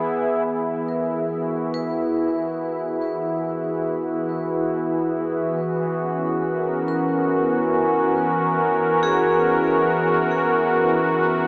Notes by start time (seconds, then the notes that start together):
Already playing: E3 B3 E4 G#4
0.45 E3 B3
0.88 A#4
1.29 F#4
1.74 B4
5.61 E3
5.97 C#4
6.47 A#4
6.88 A#4
9.03 G#4
11.28 B3